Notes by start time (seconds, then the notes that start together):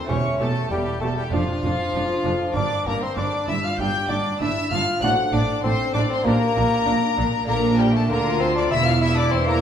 0.04 A3 E4 G4 C#6
0.09 E1 E2 C#4 G4 C#5
0.40 E1 E2 A3 G4 A4 A5
0.70 E1 E2 G3 G4 G5
1.00 E1 E2 A3 G4 A4 A5
1.16 G3 G4 G5
1.29 F1 F2 A3 D4 F4 F5
1.33 F2 F3 D4 F4
1.62 F1 F2 D4
1.94 F1 F2 D4
2.24 F1 F2 D4
2.52 G1 A#3 D4 A#4 D6
2.56 G2 D4 D5
2.86 G1 G2 A#3 D4 A#4 A#5
3.03 C4 C5 C6
3.16 G1 G2 D4 D5 D6
3.47 G1 G2 D4 E4 E5 E6
3.63 F4 F5 F6
3.79 G1 G2 D4 G4 G5 G6
4.09 G1 G2 D4 D5 D6
4.40 G1 G2 D4 E4 E5 E6
4.71 G1 G2 D4 F4 F5 F6
5.00 A1 A2 C4 D4 F#4 A4 F#6
5.04 A2 F#5
5.32 A1 A2 D4 D5 D6
5.64 A1 A2 C4 D4 C5 C6
5.94 A1 A2 D4 D5 D6
6.09 C4 C5 C6
6.22 A#2 A#3 D4 G4
6.26 A#1 A#2 D4 A#4 A#5
6.56 A#1 A#2 D4
6.86 A#1 A#2 D4
7.16 A#1 A#2 D4
7.44 A#3 D4 A4
7.48 A#1 A#2 D4 A#4 A#5
7.78 G3 G4 G5
7.93 A3 A4 A5
8.09 D2 D3 A#3 F4 A#4 A#5
8.39 C4 C5 C6
8.55 D4 D5 D6
8.67 A#3 E4 G4
8.71 E1 E2 E4 E5 E6
8.85 F4 F5 F6
9.01 E4 E5 E6
9.15 D4 D5
9.19 D6
9.31 E2 E3 C4 C5 C6
9.46 A#3 A#4 A#5